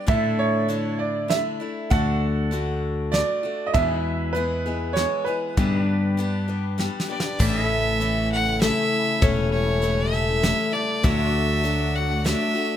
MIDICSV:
0, 0, Header, 1, 8, 480
1, 0, Start_track
1, 0, Tempo, 608519
1, 64, Time_signature, 3, 2, 24, 8
1, 10071, End_track
2, 0, Start_track
2, 0, Title_t, "Fiddle"
2, 0, Program_c, 0, 110
2, 5598, Note_on_c, 0, 74, 87
2, 5846, Note_on_c, 0, 76, 104
2, 5858, Note_off_c, 0, 74, 0
2, 6560, Note_off_c, 0, 76, 0
2, 6563, Note_on_c, 0, 78, 105
2, 6782, Note_off_c, 0, 78, 0
2, 6798, Note_on_c, 0, 76, 106
2, 7270, Note_on_c, 0, 73, 93
2, 7281, Note_off_c, 0, 76, 0
2, 7506, Note_off_c, 0, 73, 0
2, 7511, Note_on_c, 0, 73, 103
2, 7986, Note_on_c, 0, 76, 102
2, 7998, Note_off_c, 0, 73, 0
2, 8461, Note_on_c, 0, 74, 98
2, 8473, Note_off_c, 0, 76, 0
2, 8710, Note_on_c, 0, 76, 109
2, 8722, Note_off_c, 0, 74, 0
2, 9429, Note_on_c, 0, 78, 96
2, 9440, Note_off_c, 0, 76, 0
2, 9662, Note_on_c, 0, 76, 96
2, 9674, Note_off_c, 0, 78, 0
2, 10071, Note_off_c, 0, 76, 0
2, 10071, End_track
3, 0, Start_track
3, 0, Title_t, "Upright piano"
3, 0, Program_c, 1, 0
3, 69, Note_on_c, 1, 76, 85
3, 291, Note_off_c, 1, 76, 0
3, 306, Note_on_c, 1, 73, 88
3, 755, Note_off_c, 1, 73, 0
3, 780, Note_on_c, 1, 74, 75
3, 1007, Note_off_c, 1, 74, 0
3, 1022, Note_on_c, 1, 76, 76
3, 1503, Note_on_c, 1, 78, 78
3, 1520, Note_off_c, 1, 76, 0
3, 2196, Note_off_c, 1, 78, 0
3, 2459, Note_on_c, 1, 74, 94
3, 2891, Note_on_c, 1, 75, 73
3, 2903, Note_off_c, 1, 74, 0
3, 2947, Note_on_c, 1, 76, 98
3, 2949, Note_off_c, 1, 75, 0
3, 3399, Note_off_c, 1, 76, 0
3, 3413, Note_on_c, 1, 71, 89
3, 3890, Note_on_c, 1, 73, 82
3, 3919, Note_off_c, 1, 71, 0
3, 4137, Note_on_c, 1, 71, 73
3, 4150, Note_off_c, 1, 73, 0
3, 5555, Note_off_c, 1, 71, 0
3, 10071, End_track
4, 0, Start_track
4, 0, Title_t, "Pedal steel guitar"
4, 0, Program_c, 2, 26
4, 61, Note_on_c, 2, 62, 69
4, 66, Note_on_c, 2, 64, 65
4, 75, Note_on_c, 2, 69, 68
4, 1492, Note_off_c, 2, 62, 0
4, 1495, Note_off_c, 2, 64, 0
4, 1499, Note_off_c, 2, 69, 0
4, 1515, Note_on_c, 2, 62, 67
4, 1521, Note_on_c, 2, 66, 69
4, 1528, Note_on_c, 2, 69, 67
4, 2941, Note_off_c, 2, 62, 0
4, 2944, Note_off_c, 2, 66, 0
4, 2947, Note_off_c, 2, 69, 0
4, 2953, Note_on_c, 2, 62, 67
4, 2965, Note_on_c, 2, 68, 67
4, 2972, Note_on_c, 2, 71, 67
4, 3151, Note_off_c, 2, 62, 0
4, 3151, Note_on_c, 2, 64, 67
4, 4381, Note_off_c, 2, 64, 0
4, 4386, Note_off_c, 2, 68, 0
4, 4390, Note_off_c, 2, 71, 0
4, 4400, Note_on_c, 2, 64, 65
4, 4410, Note_on_c, 2, 68, 65
4, 4417, Note_on_c, 2, 71, 64
4, 4568, Note_off_c, 2, 68, 0
4, 4568, Note_on_c, 2, 67, 65
4, 4598, Note_off_c, 2, 64, 0
4, 4598, Note_on_c, 2, 62, 65
4, 5823, Note_off_c, 2, 62, 0
4, 5828, Note_off_c, 2, 67, 0
4, 5832, Note_off_c, 2, 71, 0
4, 5838, Note_on_c, 2, 62, 71
4, 5850, Note_on_c, 2, 67, 75
4, 5854, Note_on_c, 2, 74, 81
4, 6035, Note_off_c, 2, 62, 0
4, 6035, Note_on_c, 2, 64, 71
4, 6047, Note_off_c, 2, 67, 0
4, 6047, Note_on_c, 2, 69, 75
4, 6051, Note_off_c, 2, 74, 0
4, 6051, Note_on_c, 2, 76, 81
4, 8682, Note_off_c, 2, 64, 0
4, 8688, Note_off_c, 2, 69, 0
4, 8690, Note_off_c, 2, 76, 0
4, 8708, Note_on_c, 2, 64, 78
4, 8716, Note_on_c, 2, 69, 79
4, 8729, Note_on_c, 2, 73, 73
4, 8886, Note_off_c, 2, 73, 0
4, 8886, Note_on_c, 2, 74, 73
4, 8905, Note_off_c, 2, 64, 0
4, 8905, Note_on_c, 2, 66, 78
4, 10071, Note_off_c, 2, 66, 0
4, 10071, Note_off_c, 2, 69, 0
4, 10071, Note_off_c, 2, 74, 0
4, 10071, End_track
5, 0, Start_track
5, 0, Title_t, "Steel-string acoustic guitar"
5, 0, Program_c, 3, 25
5, 52, Note_on_c, 3, 45, 69
5, 56, Note_on_c, 3, 50, 76
5, 59, Note_on_c, 3, 57, 80
5, 63, Note_on_c, 3, 62, 75
5, 65, Note_on_c, 3, 64, 83
5, 530, Note_off_c, 3, 50, 0
5, 539, Note_off_c, 3, 45, 0
5, 539, Note_off_c, 3, 57, 0
5, 540, Note_on_c, 3, 50, 55
5, 542, Note_on_c, 3, 57, 55
5, 543, Note_off_c, 3, 64, 0
5, 546, Note_off_c, 3, 62, 0
5, 549, Note_on_c, 3, 62, 58
5, 552, Note_on_c, 3, 64, 59
5, 1002, Note_off_c, 3, 50, 0
5, 1011, Note_off_c, 3, 57, 0
5, 1012, Note_on_c, 3, 50, 52
5, 1018, Note_off_c, 3, 62, 0
5, 1020, Note_on_c, 3, 57, 53
5, 1023, Note_off_c, 3, 64, 0
5, 1027, Note_on_c, 3, 62, 51
5, 1032, Note_on_c, 3, 64, 53
5, 1251, Note_off_c, 3, 64, 0
5, 1260, Note_off_c, 3, 50, 0
5, 1260, Note_off_c, 3, 62, 0
5, 1260, Note_on_c, 3, 64, 41
5, 1264, Note_off_c, 3, 57, 0
5, 1270, Note_on_c, 3, 62, 36
5, 1276, Note_on_c, 3, 57, 35
5, 1496, Note_off_c, 3, 57, 0
5, 1499, Note_off_c, 3, 62, 0
5, 1501, Note_on_c, 3, 50, 63
5, 1505, Note_off_c, 3, 64, 0
5, 1505, Note_on_c, 3, 57, 69
5, 1509, Note_on_c, 3, 62, 78
5, 1511, Note_on_c, 3, 66, 72
5, 1971, Note_off_c, 3, 50, 0
5, 1979, Note_off_c, 3, 57, 0
5, 1980, Note_on_c, 3, 50, 54
5, 1982, Note_off_c, 3, 62, 0
5, 1988, Note_off_c, 3, 66, 0
5, 1989, Note_on_c, 3, 57, 59
5, 1992, Note_on_c, 3, 62, 56
5, 1997, Note_on_c, 3, 66, 66
5, 2452, Note_off_c, 3, 50, 0
5, 2459, Note_off_c, 3, 57, 0
5, 2461, Note_on_c, 3, 50, 48
5, 2466, Note_off_c, 3, 62, 0
5, 2468, Note_off_c, 3, 66, 0
5, 2468, Note_on_c, 3, 57, 55
5, 2475, Note_on_c, 3, 62, 48
5, 2478, Note_on_c, 3, 66, 56
5, 2697, Note_off_c, 3, 66, 0
5, 2706, Note_on_c, 3, 66, 45
5, 2707, Note_off_c, 3, 50, 0
5, 2710, Note_off_c, 3, 57, 0
5, 2710, Note_off_c, 3, 62, 0
5, 2719, Note_on_c, 3, 62, 37
5, 2724, Note_on_c, 3, 57, 38
5, 2949, Note_off_c, 3, 66, 0
5, 2950, Note_on_c, 3, 40, 69
5, 2952, Note_on_c, 3, 47, 73
5, 2955, Note_off_c, 3, 62, 0
5, 2956, Note_off_c, 3, 57, 0
5, 2956, Note_on_c, 3, 52, 70
5, 2958, Note_on_c, 3, 59, 66
5, 2959, Note_on_c, 3, 56, 80
5, 2964, Note_on_c, 3, 68, 73
5, 3418, Note_off_c, 3, 52, 0
5, 3426, Note_off_c, 3, 56, 0
5, 3428, Note_on_c, 3, 52, 57
5, 3432, Note_off_c, 3, 40, 0
5, 3433, Note_off_c, 3, 47, 0
5, 3436, Note_on_c, 3, 56, 51
5, 3438, Note_off_c, 3, 59, 0
5, 3439, Note_off_c, 3, 68, 0
5, 3441, Note_on_c, 3, 59, 61
5, 3447, Note_on_c, 3, 68, 61
5, 3663, Note_off_c, 3, 68, 0
5, 3666, Note_off_c, 3, 59, 0
5, 3671, Note_off_c, 3, 52, 0
5, 3673, Note_on_c, 3, 68, 43
5, 3675, Note_off_c, 3, 56, 0
5, 3676, Note_on_c, 3, 59, 41
5, 3684, Note_on_c, 3, 56, 37
5, 3689, Note_on_c, 3, 52, 33
5, 3901, Note_off_c, 3, 52, 0
5, 3907, Note_off_c, 3, 56, 0
5, 3910, Note_on_c, 3, 52, 55
5, 3911, Note_off_c, 3, 59, 0
5, 3913, Note_off_c, 3, 68, 0
5, 3916, Note_on_c, 3, 56, 64
5, 3921, Note_on_c, 3, 59, 53
5, 3928, Note_on_c, 3, 68, 54
5, 4142, Note_off_c, 3, 68, 0
5, 4151, Note_off_c, 3, 59, 0
5, 4151, Note_on_c, 3, 68, 45
5, 4152, Note_off_c, 3, 52, 0
5, 4155, Note_off_c, 3, 56, 0
5, 4161, Note_on_c, 3, 59, 44
5, 4163, Note_on_c, 3, 56, 41
5, 4168, Note_on_c, 3, 52, 36
5, 4390, Note_off_c, 3, 59, 0
5, 4393, Note_off_c, 3, 68, 0
5, 4394, Note_on_c, 3, 43, 68
5, 4395, Note_off_c, 3, 52, 0
5, 4396, Note_off_c, 3, 56, 0
5, 4396, Note_on_c, 3, 50, 68
5, 4398, Note_on_c, 3, 55, 78
5, 4399, Note_on_c, 3, 59, 77
5, 4404, Note_on_c, 3, 67, 83
5, 4405, Note_on_c, 3, 62, 69
5, 4860, Note_off_c, 3, 55, 0
5, 4869, Note_off_c, 3, 59, 0
5, 4869, Note_on_c, 3, 55, 54
5, 4874, Note_off_c, 3, 62, 0
5, 4875, Note_off_c, 3, 43, 0
5, 4876, Note_off_c, 3, 50, 0
5, 4878, Note_on_c, 3, 59, 59
5, 4880, Note_off_c, 3, 67, 0
5, 4884, Note_on_c, 3, 62, 60
5, 4890, Note_on_c, 3, 67, 72
5, 5100, Note_off_c, 3, 67, 0
5, 5103, Note_off_c, 3, 62, 0
5, 5110, Note_on_c, 3, 67, 43
5, 5112, Note_off_c, 3, 55, 0
5, 5112, Note_off_c, 3, 59, 0
5, 5112, Note_on_c, 3, 62, 43
5, 5121, Note_on_c, 3, 59, 45
5, 5122, Note_on_c, 3, 55, 40
5, 5337, Note_off_c, 3, 55, 0
5, 5343, Note_off_c, 3, 59, 0
5, 5347, Note_on_c, 3, 55, 66
5, 5351, Note_off_c, 3, 62, 0
5, 5352, Note_off_c, 3, 67, 0
5, 5353, Note_on_c, 3, 59, 61
5, 5361, Note_on_c, 3, 62, 58
5, 5362, Note_on_c, 3, 67, 64
5, 5578, Note_off_c, 3, 67, 0
5, 5587, Note_off_c, 3, 62, 0
5, 5587, Note_on_c, 3, 67, 56
5, 5591, Note_off_c, 3, 55, 0
5, 5591, Note_off_c, 3, 59, 0
5, 5597, Note_on_c, 3, 62, 49
5, 5600, Note_on_c, 3, 59, 46
5, 5606, Note_on_c, 3, 55, 42
5, 5828, Note_on_c, 3, 45, 68
5, 5830, Note_off_c, 3, 55, 0
5, 5831, Note_off_c, 3, 59, 0
5, 5831, Note_off_c, 3, 67, 0
5, 5833, Note_on_c, 3, 52, 85
5, 5834, Note_on_c, 3, 57, 78
5, 5836, Note_off_c, 3, 62, 0
5, 5840, Note_on_c, 3, 61, 75
5, 5841, Note_on_c, 3, 69, 90
5, 6301, Note_off_c, 3, 52, 0
5, 6311, Note_off_c, 3, 45, 0
5, 6311, Note_on_c, 3, 52, 62
5, 6313, Note_off_c, 3, 57, 0
5, 6314, Note_off_c, 3, 61, 0
5, 6316, Note_on_c, 3, 57, 59
5, 6323, Note_off_c, 3, 69, 0
5, 6324, Note_on_c, 3, 61, 66
5, 6327, Note_on_c, 3, 69, 69
5, 6778, Note_off_c, 3, 52, 0
5, 6788, Note_on_c, 3, 52, 56
5, 6789, Note_off_c, 3, 61, 0
5, 6792, Note_off_c, 3, 57, 0
5, 6795, Note_on_c, 3, 57, 61
5, 6798, Note_on_c, 3, 61, 59
5, 6802, Note_off_c, 3, 69, 0
5, 6805, Note_on_c, 3, 69, 74
5, 7264, Note_off_c, 3, 52, 0
5, 7270, Note_on_c, 3, 45, 83
5, 7271, Note_off_c, 3, 61, 0
5, 7274, Note_off_c, 3, 57, 0
5, 7274, Note_on_c, 3, 52, 81
5, 7277, Note_on_c, 3, 57, 80
5, 7280, Note_off_c, 3, 69, 0
5, 7280, Note_on_c, 3, 61, 90
5, 7283, Note_on_c, 3, 69, 77
5, 7736, Note_off_c, 3, 52, 0
5, 7745, Note_on_c, 3, 52, 60
5, 7747, Note_off_c, 3, 57, 0
5, 7749, Note_off_c, 3, 61, 0
5, 7750, Note_off_c, 3, 45, 0
5, 7750, Note_on_c, 3, 57, 66
5, 7758, Note_off_c, 3, 69, 0
5, 7758, Note_on_c, 3, 61, 62
5, 7761, Note_on_c, 3, 69, 67
5, 7981, Note_off_c, 3, 69, 0
5, 7988, Note_off_c, 3, 52, 0
5, 7988, Note_off_c, 3, 61, 0
5, 7990, Note_off_c, 3, 57, 0
5, 7990, Note_on_c, 3, 69, 48
5, 7998, Note_on_c, 3, 61, 53
5, 8005, Note_on_c, 3, 57, 38
5, 8219, Note_off_c, 3, 57, 0
5, 8221, Note_on_c, 3, 52, 62
5, 8225, Note_off_c, 3, 61, 0
5, 8229, Note_on_c, 3, 57, 64
5, 8230, Note_off_c, 3, 69, 0
5, 8235, Note_on_c, 3, 61, 59
5, 8238, Note_on_c, 3, 69, 65
5, 8453, Note_off_c, 3, 69, 0
5, 8462, Note_on_c, 3, 69, 48
5, 8465, Note_off_c, 3, 52, 0
5, 8469, Note_off_c, 3, 57, 0
5, 8472, Note_off_c, 3, 61, 0
5, 8481, Note_on_c, 3, 57, 41
5, 8698, Note_off_c, 3, 57, 0
5, 8703, Note_on_c, 3, 50, 76
5, 8705, Note_off_c, 3, 69, 0
5, 8706, Note_on_c, 3, 54, 80
5, 8708, Note_on_c, 3, 57, 80
5, 8711, Note_on_c, 3, 62, 88
5, 8713, Note_on_c, 3, 66, 98
5, 9168, Note_off_c, 3, 54, 0
5, 9176, Note_off_c, 3, 57, 0
5, 9177, Note_on_c, 3, 54, 71
5, 9184, Note_off_c, 3, 50, 0
5, 9185, Note_off_c, 3, 62, 0
5, 9185, Note_on_c, 3, 57, 65
5, 9187, Note_off_c, 3, 66, 0
5, 9188, Note_on_c, 3, 62, 65
5, 9196, Note_on_c, 3, 66, 65
5, 9649, Note_off_c, 3, 54, 0
5, 9653, Note_off_c, 3, 57, 0
5, 9658, Note_on_c, 3, 54, 57
5, 9662, Note_off_c, 3, 62, 0
5, 9662, Note_on_c, 3, 57, 66
5, 9666, Note_off_c, 3, 66, 0
5, 9672, Note_on_c, 3, 62, 68
5, 9675, Note_on_c, 3, 66, 66
5, 9887, Note_off_c, 3, 66, 0
5, 9896, Note_off_c, 3, 62, 0
5, 9897, Note_on_c, 3, 66, 51
5, 9901, Note_off_c, 3, 54, 0
5, 9903, Note_off_c, 3, 57, 0
5, 9906, Note_on_c, 3, 62, 45
5, 9913, Note_on_c, 3, 57, 46
5, 10071, Note_off_c, 3, 57, 0
5, 10071, Note_off_c, 3, 62, 0
5, 10071, Note_off_c, 3, 66, 0
5, 10071, End_track
6, 0, Start_track
6, 0, Title_t, "String section"
6, 0, Program_c, 4, 48
6, 5829, Note_on_c, 4, 49, 73
6, 5831, Note_on_c, 4, 57, 73
6, 5833, Note_on_c, 4, 64, 84
6, 7256, Note_off_c, 4, 57, 0
6, 7271, Note_on_c, 4, 55, 78
6, 8677, Note_off_c, 4, 49, 0
6, 8679, Note_off_c, 4, 64, 0
6, 8694, Note_off_c, 4, 55, 0
6, 8703, Note_on_c, 4, 62, 79
6, 8705, Note_on_c, 4, 57, 75
6, 8705, Note_on_c, 4, 66, 85
6, 10071, Note_off_c, 4, 57, 0
6, 10071, Note_off_c, 4, 62, 0
6, 10071, Note_off_c, 4, 66, 0
6, 10071, End_track
7, 0, Start_track
7, 0, Title_t, "Fingered electric bass"
7, 0, Program_c, 5, 33
7, 65, Note_on_c, 5, 45, 88
7, 1094, Note_off_c, 5, 45, 0
7, 1508, Note_on_c, 5, 38, 88
7, 2536, Note_off_c, 5, 38, 0
7, 2956, Note_on_c, 5, 40, 88
7, 3982, Note_off_c, 5, 40, 0
7, 4398, Note_on_c, 5, 43, 91
7, 5422, Note_off_c, 5, 43, 0
7, 5836, Note_on_c, 5, 33, 96
7, 6860, Note_off_c, 5, 33, 0
7, 7276, Note_on_c, 5, 28, 93
7, 8297, Note_off_c, 5, 28, 0
7, 8709, Note_on_c, 5, 38, 110
7, 9731, Note_off_c, 5, 38, 0
7, 10071, End_track
8, 0, Start_track
8, 0, Title_t, "Drums"
8, 65, Note_on_c, 9, 36, 108
8, 65, Note_on_c, 9, 42, 57
8, 144, Note_off_c, 9, 36, 0
8, 144, Note_off_c, 9, 42, 0
8, 547, Note_on_c, 9, 42, 57
8, 626, Note_off_c, 9, 42, 0
8, 1028, Note_on_c, 9, 38, 76
8, 1028, Note_on_c, 9, 42, 57
8, 1106, Note_off_c, 9, 38, 0
8, 1106, Note_off_c, 9, 42, 0
8, 1509, Note_on_c, 9, 36, 100
8, 1509, Note_on_c, 9, 42, 56
8, 1588, Note_off_c, 9, 36, 0
8, 1588, Note_off_c, 9, 42, 0
8, 1991, Note_on_c, 9, 42, 57
8, 2070, Note_off_c, 9, 42, 0
8, 2474, Note_on_c, 9, 38, 79
8, 2474, Note_on_c, 9, 42, 50
8, 2553, Note_off_c, 9, 38, 0
8, 2553, Note_off_c, 9, 42, 0
8, 2954, Note_on_c, 9, 36, 93
8, 2954, Note_on_c, 9, 42, 54
8, 3033, Note_off_c, 9, 36, 0
8, 3033, Note_off_c, 9, 42, 0
8, 3436, Note_on_c, 9, 42, 56
8, 3515, Note_off_c, 9, 42, 0
8, 3917, Note_on_c, 9, 38, 83
8, 3917, Note_on_c, 9, 42, 59
8, 3996, Note_off_c, 9, 38, 0
8, 3996, Note_off_c, 9, 42, 0
8, 4397, Note_on_c, 9, 36, 100
8, 4397, Note_on_c, 9, 42, 60
8, 4476, Note_off_c, 9, 36, 0
8, 4476, Note_off_c, 9, 42, 0
8, 4877, Note_on_c, 9, 42, 55
8, 4956, Note_off_c, 9, 42, 0
8, 5358, Note_on_c, 9, 38, 52
8, 5437, Note_off_c, 9, 38, 0
8, 5519, Note_on_c, 9, 38, 60
8, 5598, Note_off_c, 9, 38, 0
8, 5679, Note_on_c, 9, 38, 84
8, 5758, Note_off_c, 9, 38, 0
8, 5836, Note_on_c, 9, 49, 102
8, 5837, Note_on_c, 9, 36, 101
8, 5915, Note_off_c, 9, 49, 0
8, 5916, Note_off_c, 9, 36, 0
8, 6319, Note_on_c, 9, 42, 60
8, 6398, Note_off_c, 9, 42, 0
8, 6797, Note_on_c, 9, 38, 90
8, 6797, Note_on_c, 9, 42, 63
8, 6875, Note_off_c, 9, 38, 0
8, 6875, Note_off_c, 9, 42, 0
8, 7275, Note_on_c, 9, 36, 111
8, 7275, Note_on_c, 9, 42, 63
8, 7354, Note_off_c, 9, 36, 0
8, 7354, Note_off_c, 9, 42, 0
8, 7752, Note_on_c, 9, 42, 66
8, 7830, Note_off_c, 9, 42, 0
8, 8230, Note_on_c, 9, 38, 85
8, 8230, Note_on_c, 9, 42, 63
8, 8309, Note_off_c, 9, 38, 0
8, 8309, Note_off_c, 9, 42, 0
8, 8710, Note_on_c, 9, 36, 111
8, 8711, Note_on_c, 9, 42, 63
8, 8789, Note_off_c, 9, 36, 0
8, 8789, Note_off_c, 9, 42, 0
8, 9189, Note_on_c, 9, 42, 64
8, 9268, Note_off_c, 9, 42, 0
8, 9668, Note_on_c, 9, 38, 84
8, 9668, Note_on_c, 9, 42, 66
8, 9747, Note_off_c, 9, 38, 0
8, 9747, Note_off_c, 9, 42, 0
8, 10071, End_track
0, 0, End_of_file